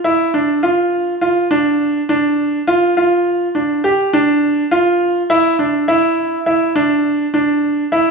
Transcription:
grand piano
0.04 E4
0.34 D4
0.63 F4
1.21 F4
1.51 D4
2.09 D4
2.67 F4
2.97 F4
3.55 D4
3.84 G4
4.13 D4
4.71 F4
5.30 E4
5.59 D4
5.88 E4
6.46 E4
6.75 D4
7.34 D4
7.92 E4

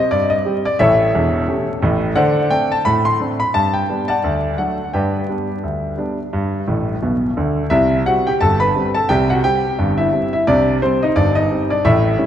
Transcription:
grand piano
Already playing: D#5
0.11 G2 D5
0.30 D#5
0.45 G3 C4 G4
0.65 D5
0.79 A1 A2 A4 C#5 E5
1.14 E1 E2
1.48 A3 C#4 G4
1.82 A1 A2
2.15 D3 C5 D5 F#5
2.50 A3 C4 D4 G5
2.72 A5
2.85 A2 B5
3.05 C6
3.20 A3 C4 D4
3.40 B5
3.54 G2 A5
3.73 G5
3.89 G3 B3 D4
4.08 D5 F#5 A5
4.24 D2
4.58 F#3 A3 D4 F#5
4.93 G2 B4 D5 G5
5.29 G3 B3 D4
5.63 D2
5.98 G3 B3 D4
6.33 G2
6.67 A1 A2
7.02 B1 B2
7.37 D2 D3
7.70 C2 C3 E4 E5
8.06 G3 C4 F#4 F#5
8.27 G4 G5
8.41 G1 G2 A4 A5
8.60 B4 B5
8.76 G3 C4
8.94 A4 A5
9.09 C2 C3 G4 G5
9.30 F#4 F#5
9.44 G3 C4 G4 G5
9.79 G1 G2
9.98 E4 E5
10.12 G3 C4
10.33 E4 E5
10.47 C2 C3 D4 D5
10.82 G3 C4 C5
11.03 D#4 D#5
11.16 G1 G2 D4 D5
11.35 D#4 D#5
11.51 G3 C4
11.70 D4 D5
11.85 A1 A2 E4 E5
12.18 G3 C#4 E4

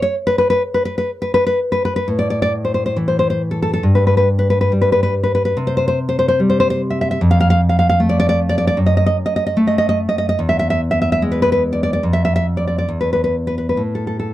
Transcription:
nylon-string guitar
0.02 C#5
0.27 B4
0.38 B4
0.50 B4
0.74 B4
0.85 B4
0.98 B4
1.22 B4
1.34 B4
1.47 B4
1.72 B4
1.85 B4
1.96 B4
2.08 A2
2.19 D5
2.30 D5
2.42 D5
2.65 C5
2.74 C5
2.86 C5
2.96 E3
3.08 C5
3.19 C5
3.30 C5
3.51 A4
3.62 A4
3.73 A4
3.83 G2
3.95 B4
4.07 B4
4.17 B4
4.39 B4
4.50 B4
4.61 B4
4.72 G3
4.81 B4
4.92 B4
5.03 B4
5.23 B4
5.35 B4
5.45 B4
5.57 C3
5.67 C5
5.77 C5
5.88 C5
6.09 C5
6.19 C5
6.28 C5
6.40 G3
6.50 C5
6.60 C5
6.70 C5
6.90 E5
7.01 E5
7.11 E5
7.21 F2
7.31 F5
7.40 F5
7.50 F5
7.69 F5
7.79 F5
7.89 F5
8.00 A3
8.09 D5
8.20 D5
8.29 D5
8.49 D5
8.58 D5
8.67 D5
8.77 F#2
8.86 D#5
8.97 D#5
9.06 D#5
9.26 D#5
9.36 D#5
9.46 D#5
9.57 A3
9.67 D#5
9.78 D#5
9.89 D#5
10.09 D#5
10.18 D#5
10.29 D#5
10.39 E2
10.49 E5
10.59 E5
10.70 E5
10.91 E5
11.02 E5
11.12 E5
11.22 G#3
11.31 B4
11.42 B4
11.52 B4
11.73 D5
11.83 D5
11.93 D5
12.03 F2
12.13 E5
12.25 E5
12.36 E5
12.57 D5
12.67 D5
12.78 D5
12.88 E2
13.01 B4
13.13 B4
13.24 B4
13.47 B4
13.58 B4
13.69 B4
13.77 A2
13.95 A4
14.07 A4
14.19 A4

